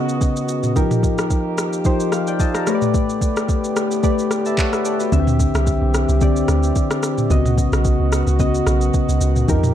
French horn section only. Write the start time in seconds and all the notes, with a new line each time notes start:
Already playing: C#2 D#3 B3 F#4
0.76 F2 D#3 A#3 G4
2.67 A2 D3 B3 G4
5.12 E3 C4
7.30 D#3 B3 F#4
9.49 A#3 G4